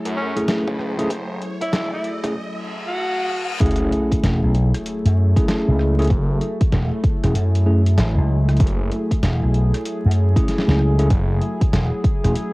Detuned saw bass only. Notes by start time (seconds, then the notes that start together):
0.05 F#2
0.68 C#2
1.10 F#1
1.73 E1
2.24 E1
3.60 F#1
6.10 F#1
8.60 F#1
11.10 F#1